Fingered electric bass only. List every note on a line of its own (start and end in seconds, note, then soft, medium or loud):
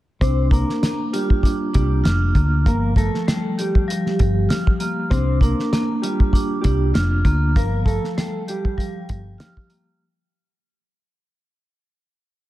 0.21 0.63 C2 loud
1.75 2.01 C2 medium
2.05 2.31 F1 loud
2.35 2.68 D2 medium
2.66 3.08 G1 loud
4.20 4.46 G1 loud
5.11 5.52 C2 loud
6.65 6.91 C2 medium
6.95 7.21 F1 loud
7.25 7.57 D2 medium
7.56 7.97 G1 loud
9.10 9.36 G1 medium